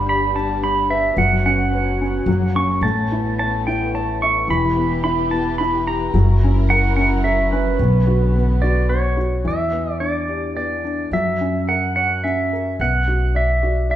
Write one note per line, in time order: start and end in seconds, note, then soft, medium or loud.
0.00 1.14 G1 medium
0.00 1.13 G3 medium
0.00 1.15 G3 medium
0.00 2.25 B3 medium
0.00 0.34 D4 soft
0.00 1.15 D4 medium
0.06 0.61 G4 soft
0.06 0.36 B5 medium
0.35 1.15 D4 soft
0.35 0.63 A5 medium
0.62 1.16 G4 medium
0.62 0.91 B5 medium
0.90 1.16 B4 soft
0.90 1.18 E5 medium
1.15 2.25 F#1 medium
1.15 2.81 F#3 medium
1.15 2.25 F#3 medium
1.15 4.44 C#4 medium
1.15 1.45 F#5 medium
1.46 2.00 C#4 medium
1.46 2.59 F#5 loud
1.73 2.26 B4 soft
2.01 2.27 C#4 soft
2.26 2.81 F#1 medium
2.26 2.81 F#3 medium
2.26 2.83 A#3 medium
2.55 2.82 C#4 soft
2.55 2.84 C#6 medium
2.81 4.44 A1 medium
2.81 4.46 A3 medium
2.81 4.45 A3 medium
2.81 4.46 B3 medium
2.81 3.34 A5 medium
3.12 3.66 E4 soft
3.39 3.93 C#5 medium
3.39 3.64 A5 medium
3.67 4.47 E4 soft
3.67 3.94 G5 medium
3.95 4.47 C#5 medium
3.95 4.22 A5 medium
4.22 4.49 E5 medium
4.22 4.50 C#6 medium
4.48 6.10 E1 medium
4.48 6.11 E3 medium
4.48 6.10 E3 medium
4.48 6.12 E4 medium
4.48 6.12 G4 medium
4.48 6.12 B4 medium
4.48 5.01 B5 medium
4.77 5.31 B3 soft
5.04 5.59 E4 medium
5.04 5.32 B5 medium
5.31 6.12 B3 soft
5.31 5.58 A5 medium
5.58 6.13 E4 medium
5.58 5.87 B5 medium
5.87 6.13 G4 soft
5.87 6.72 A#5 medium
6.13 7.76 F#1 medium
6.13 7.78 F#3 medium
6.13 7.75 F#3 medium
6.13 9.42 C#4 medium
6.13 7.78 E4 medium
6.13 7.77 A#4 medium
6.44 6.95 C#4 medium
6.70 7.23 A#4 medium
6.70 6.95 F#5 medium
6.96 7.51 C#4 medium
6.96 7.25 F#5 medium
7.24 7.77 A#4 medium
7.24 7.52 E5 medium
7.52 7.79 C#4 medium
7.52 8.86 B4 medium
7.79 9.42 B1 medium
7.79 9.44 D3 medium
7.79 9.44 B3 medium
7.79 8.33 B3 medium
8.07 8.61 F#4 medium
8.35 8.88 B3 medium
8.62 9.16 F#4 soft
8.62 8.90 D5 medium
8.89 9.44 B3 soft
8.89 9.47 C#5 medium
9.17 9.44 F#4 medium
9.45 11.09 E2 medium
9.45 11.08 E3 medium
9.45 10.00 E5 medium
9.72 10.55 B3 soft
10.00 10.83 D4 soft
10.00 10.55 D5 medium
10.28 11.10 G4 soft
10.57 11.11 B3 soft
10.57 11.13 D5 medium
10.84 11.12 D4 soft
11.11 12.75 F#2 medium
11.11 12.76 F#3 medium
11.11 11.70 E5 medium
11.41 12.23 C#4 soft
11.68 12.51 A#4 soft
11.68 11.95 F#5 medium
11.96 12.77 C#5 soft
11.96 12.22 F#5 medium
12.24 12.78 C#4 soft
12.24 12.75 E5 medium
12.53 12.79 A#4 soft
12.79 13.96 B1 medium
12.79 13.96 B3 soft
12.79 13.38 F#5 medium
13.08 13.61 F#4 soft
13.35 13.88 D5 soft
13.35 13.90 E5 medium
13.63 13.96 F#4 soft
13.90 13.96 D5 soft
13.90 13.96 E5 medium